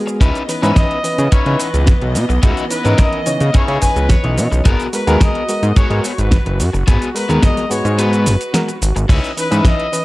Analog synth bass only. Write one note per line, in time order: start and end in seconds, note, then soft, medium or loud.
0.21 0.31 C#2 loud
0.63 0.73 G#2 medium
1.18 1.28 C#3 medium
1.32 1.43 C#3 soft
1.46 1.56 C#3 loud
1.74 1.94 C#2 loud
2.02 2.17 B1 medium
2.15 2.26 B2 loud
2.29 2.39 B1 loud
2.43 2.53 C#2 loud
2.85 2.95 G#2 medium
3.27 3.38 C#3 soft
3.41 3.51 C#3 medium
3.68 3.78 C#3 loud
3.96 4.16 C#2 medium
4.24 4.39 B1 medium
4.37 4.48 B2 medium
4.52 4.62 B1 loud
4.66 4.76 G#1 loud
5.07 5.17 D#2 medium
5.63 5.73 G#2 medium
5.77 5.88 G#2 soft
5.90 6.00 G#2 loud
6.18 6.38 G#1 loud
6.46 6.61 F#1 medium
6.60 6.70 F#2 loud
6.74 6.84 F#1 loud
6.88 6.98 G#1 loud
7.29 7.39 D#2 medium
7.71 7.82 G#2 soft
7.85 8.28 G#2 medium
8.26 8.37 F#1 loud
8.82 8.92 G#1 loud
8.96 9.06 G#1 medium
9.09 9.20 C#2 loud
9.52 9.62 G#2 medium